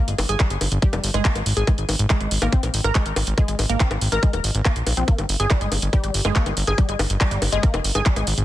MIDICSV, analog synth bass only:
0, 0, Header, 1, 2, 480
1, 0, Start_track
1, 0, Tempo, 425532
1, 1888, Time_signature, 4, 2, 24, 8
1, 9530, End_track
2, 0, Start_track
2, 0, Title_t, "Analog synth bass"
2, 0, Program_c, 0, 38
2, 88, Note_on_c, 0, 31, 82
2, 163, Note_off_c, 0, 31, 0
2, 208, Note_on_c, 0, 31, 98
2, 283, Note_off_c, 0, 31, 0
2, 328, Note_on_c, 0, 31, 96
2, 403, Note_off_c, 0, 31, 0
2, 568, Note_on_c, 0, 31, 87
2, 643, Note_off_c, 0, 31, 0
2, 688, Note_on_c, 0, 31, 101
2, 763, Note_off_c, 0, 31, 0
2, 808, Note_on_c, 0, 31, 95
2, 883, Note_off_c, 0, 31, 0
2, 1048, Note_on_c, 0, 29, 96
2, 1123, Note_off_c, 0, 29, 0
2, 1168, Note_on_c, 0, 31, 100
2, 1244, Note_off_c, 0, 31, 0
2, 1289, Note_on_c, 0, 31, 98
2, 1364, Note_off_c, 0, 31, 0
2, 1528, Note_on_c, 0, 32, 92
2, 1604, Note_off_c, 0, 32, 0
2, 1649, Note_on_c, 0, 32, 107
2, 1724, Note_off_c, 0, 32, 0
2, 1768, Note_on_c, 0, 32, 94
2, 1844, Note_off_c, 0, 32, 0
2, 2008, Note_on_c, 0, 32, 82
2, 2084, Note_off_c, 0, 32, 0
2, 2128, Note_on_c, 0, 32, 95
2, 2204, Note_off_c, 0, 32, 0
2, 2248, Note_on_c, 0, 32, 96
2, 2324, Note_off_c, 0, 32, 0
2, 2488, Note_on_c, 0, 32, 85
2, 2563, Note_off_c, 0, 32, 0
2, 2608, Note_on_c, 0, 32, 98
2, 2684, Note_off_c, 0, 32, 0
2, 2728, Note_on_c, 0, 32, 90
2, 2804, Note_off_c, 0, 32, 0
2, 2968, Note_on_c, 0, 34, 89
2, 3044, Note_off_c, 0, 34, 0
2, 3089, Note_on_c, 0, 32, 94
2, 3164, Note_off_c, 0, 32, 0
2, 3208, Note_on_c, 0, 32, 94
2, 3283, Note_off_c, 0, 32, 0
2, 3448, Note_on_c, 0, 32, 85
2, 3524, Note_off_c, 0, 32, 0
2, 3568, Note_on_c, 0, 32, 103
2, 3644, Note_off_c, 0, 32, 0
2, 3689, Note_on_c, 0, 32, 92
2, 3764, Note_off_c, 0, 32, 0
2, 3928, Note_on_c, 0, 32, 88
2, 4004, Note_off_c, 0, 32, 0
2, 4049, Note_on_c, 0, 32, 97
2, 4124, Note_off_c, 0, 32, 0
2, 4169, Note_on_c, 0, 32, 95
2, 4244, Note_off_c, 0, 32, 0
2, 4409, Note_on_c, 0, 32, 90
2, 4484, Note_off_c, 0, 32, 0
2, 4529, Note_on_c, 0, 32, 100
2, 4604, Note_off_c, 0, 32, 0
2, 4649, Note_on_c, 0, 32, 89
2, 4724, Note_off_c, 0, 32, 0
2, 4888, Note_on_c, 0, 27, 93
2, 4964, Note_off_c, 0, 27, 0
2, 5008, Note_on_c, 0, 32, 100
2, 5083, Note_off_c, 0, 32, 0
2, 5128, Note_on_c, 0, 32, 93
2, 5204, Note_off_c, 0, 32, 0
2, 5368, Note_on_c, 0, 34, 86
2, 5444, Note_off_c, 0, 34, 0
2, 5489, Note_on_c, 0, 34, 102
2, 5564, Note_off_c, 0, 34, 0
2, 5608, Note_on_c, 0, 34, 92
2, 5684, Note_off_c, 0, 34, 0
2, 5849, Note_on_c, 0, 31, 85
2, 5924, Note_off_c, 0, 31, 0
2, 5968, Note_on_c, 0, 31, 94
2, 6044, Note_off_c, 0, 31, 0
2, 6089, Note_on_c, 0, 31, 93
2, 6164, Note_off_c, 0, 31, 0
2, 6329, Note_on_c, 0, 31, 84
2, 6404, Note_off_c, 0, 31, 0
2, 6449, Note_on_c, 0, 31, 102
2, 6524, Note_off_c, 0, 31, 0
2, 6569, Note_on_c, 0, 31, 90
2, 6644, Note_off_c, 0, 31, 0
2, 6809, Note_on_c, 0, 32, 88
2, 6884, Note_off_c, 0, 32, 0
2, 6929, Note_on_c, 0, 31, 98
2, 7004, Note_off_c, 0, 31, 0
2, 7049, Note_on_c, 0, 31, 93
2, 7124, Note_off_c, 0, 31, 0
2, 7288, Note_on_c, 0, 31, 86
2, 7364, Note_off_c, 0, 31, 0
2, 7408, Note_on_c, 0, 31, 104
2, 7483, Note_off_c, 0, 31, 0
2, 7528, Note_on_c, 0, 31, 90
2, 7604, Note_off_c, 0, 31, 0
2, 7768, Note_on_c, 0, 31, 84
2, 7844, Note_off_c, 0, 31, 0
2, 7888, Note_on_c, 0, 31, 97
2, 7964, Note_off_c, 0, 31, 0
2, 8009, Note_on_c, 0, 31, 94
2, 8084, Note_off_c, 0, 31, 0
2, 8248, Note_on_c, 0, 31, 88
2, 8324, Note_off_c, 0, 31, 0
2, 8368, Note_on_c, 0, 31, 103
2, 8444, Note_off_c, 0, 31, 0
2, 8488, Note_on_c, 0, 31, 90
2, 8563, Note_off_c, 0, 31, 0
2, 8728, Note_on_c, 0, 29, 92
2, 8803, Note_off_c, 0, 29, 0
2, 8848, Note_on_c, 0, 31, 96
2, 8923, Note_off_c, 0, 31, 0
2, 8968, Note_on_c, 0, 31, 94
2, 9043, Note_off_c, 0, 31, 0
2, 9208, Note_on_c, 0, 32, 89
2, 9283, Note_off_c, 0, 32, 0
2, 9328, Note_on_c, 0, 32, 108
2, 9403, Note_off_c, 0, 32, 0
2, 9448, Note_on_c, 0, 32, 88
2, 9523, Note_off_c, 0, 32, 0
2, 9530, End_track
0, 0, End_of_file